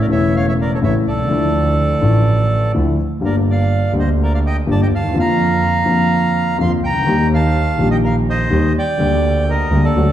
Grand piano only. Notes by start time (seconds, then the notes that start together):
0.08 E1 E2 C#3 E3 A3
0.12 E4
0.82 A1 A2 C#3 E3 A3 E4
1.12 B1
1.18 C2
1.24 C#2 D3
1.28 D2 F3 A3 E4
2.00 A1 A2 D3 F3 A3 E4
2.74 D2 D3 F3 A3 E4
3.20 G1 G2 D3 G3 A#3 G4
3.92 D2 D3 G3 A#3 G4
4.66 G1 G2 D3 G3 A#3 G4
4.97 D2
5.03 D#2
5.09 E2 D3
5.14 F2 F3 A#3 F4
5.84 F2 D3 F3 A#3 F4
6.58 F2 D3 F3 A#3 F4
6.88 C2
6.94 C#2
7.01 D2
7.06 D#2 D#3 G3 A#3 G4
7.77 A#1 A#2 D#3 G3 A#3 G4
8.50 D#2 D#3 G3 A#3 G4
8.97 D2 D3 G3 A#3
9.01 G4
9.71 D2 D3 G3 A#3 G4
9.96 D2 D3 F#3 A3 F#4